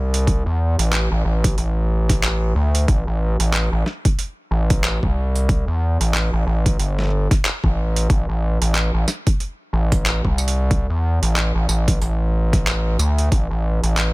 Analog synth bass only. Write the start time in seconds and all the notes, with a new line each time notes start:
Already playing: C2
0.46 E2
0.79 A1
1.12 A1
1.25 A1
1.58 A1
2.56 D2
2.88 A1
3.07 A1
3.40 A1
3.72 A1
4.51 A1
5.03 C2
5.68 E2
6.01 A1
6.33 A1
6.47 A1
6.79 G1
7.64 A1
8.10 A1
8.29 A1
8.61 A1
8.94 A1
9.73 A1
10.25 C2
10.90 E2
11.22 A1
11.55 A1
11.69 A1
12.01 A1
12.99 D2
13.32 A1
13.51 A1
13.83 A1